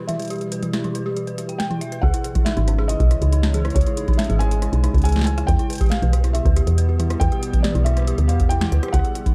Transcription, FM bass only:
2.03 C#2
2.57 G#1
3.00 B1
3.22 C#2
3.76 C#2
4.30 G#1
4.73 B1
4.94 C#2
5.48 E2
6.02 B1
6.46 D2
6.67 E2
7.21 E2
7.75 B1
8.18 D2
8.29 E2
8.72 D2
8.94 C#2

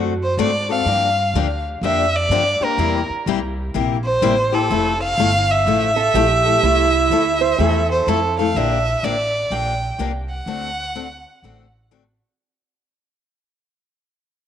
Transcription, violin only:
0.23 C5
0.41 D5
0.72 F5
1.85 E5
2.16 D5
2.64 A#4
4.04 C5
4.54 A4
5.03 F5
5.50 E5
7.92 C5
8.09 A4
8.40 F5
8.56 E5
9.04 D5
9.52 G5
10.29 F#5

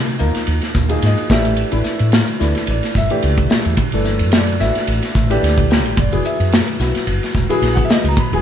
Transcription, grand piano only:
Already playing: F3 A#3 D#4 A#4
0.19 F3 A#3 D#4 A#4
0.89 F3 A#3 D#4 G#4
1.06 D#5
1.30 E3 A3 D4 G4 E5
1.72 E3 A3 D4 E4
2.39 E3 A3 D4 E4
2.70 D5
2.97 E5
3.10 E3 A3 D4 G4
3.94 E3 A3 D4 A4
4.32 C#5
4.36 D5
4.60 E3 A3 D4 F#4 E5
5.30 E3 A3 D4 G4
5.41 D5
5.70 G5
6.00 D5
6.12 F#3 B3 E4 G#4
6.26 E5
6.80 F#3 B3 E4 F#4
7.49 F#3 B3 E4 G#4
7.74 F#5
7.85 E5
7.92 D#5
8.08 A#5
8.20 B5
8.33 F#3 B3 E4 G#4 G#5

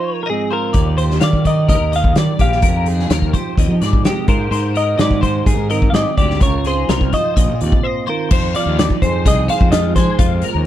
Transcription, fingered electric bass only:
0.75 D#2
1.23 D#3
1.69 D#2
1.80 D#2
2.16 D#3
2.39 A#1
2.63 F2
3.10 D#2
3.57 D#2
3.68 F3
3.81 G#2
4.28 G#2
4.51 G#2
4.99 G#2
5.46 G#2
5.57 G#2
5.92 G#2
6.18 D2
6.41 C#2
6.89 C2
7.36 A#1
7.49 A#2
7.62 D#2
8.31 F2
8.66 D#2
9.02 F2
9.26 C2
9.61 F2
9.96 F3
10.19 F2
10.55 D#2

